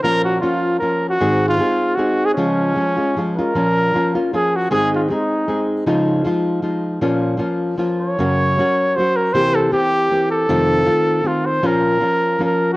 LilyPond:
<<
  \new Staff \with { instrumentName = "Trumpet" } { \time 3/4 \key des \major \tempo 4 = 156 bes'8 ges'8 f'4 bes'8. ges'16~ | ges'8. f'4~ f'16 ges'8. aes'16 | des'2~ des'8 bes'8~ | \key bes \minor bes'2 aes'8 ges'8 |
aes'8 f'8 ees'4. r8 | r2. | r2 r8 des''8~ | des''2 c''8 bes'8 |
c''8 a'8 g'4. a'8~ | a'2 f'8 c''8 | bes'2 bes'8. ges'16 | }
  \new Staff \with { instrumentName = "Nylon-string guitar" } { \time 3/4 \key des \major <bes, f bes des' f'>4 <f bes des' f'>4 <f bes des' f'>4 | <aes, ees aes c' ees' aes'>4 <aes c' ees' aes'>4 <aes c' ees' aes'>4 | <des f aes des' f'>4 <f aes des' f'>8 <aes des' f'>8 <f aes des' f'>8 <aes des' f'>8 | \key bes \minor <bes, f bes des' f'>4 <f bes des' f'>8 <bes des' f'>8 <f bes des' f'>4 |
<aes, ees aes c' ees' aes'>4 <aes c' ees' aes'>4 <aes c' ees' aes'>4 | <des f aes ees' f'>4 <f aes ees' f'>4 <f aes ees' f'>4 | <bes, f bes des' f'>4 <f bes des' f'>4 <f bes des' f'>4 | <ges, des ges bes des' ges'>4 <ges bes des' ges'>4 <ges bes des' ges'>4 |
<c e bes c' g'>4 <e bes c' g'>4 <e bes c' g'>4 | <f, c ees a c' f'>4 <ees a c' f'>4 <ees a c' f'>4 | <bes, f bes des' f'>4 <f bes des' f'>4 <f bes des' f'>4 | }
>>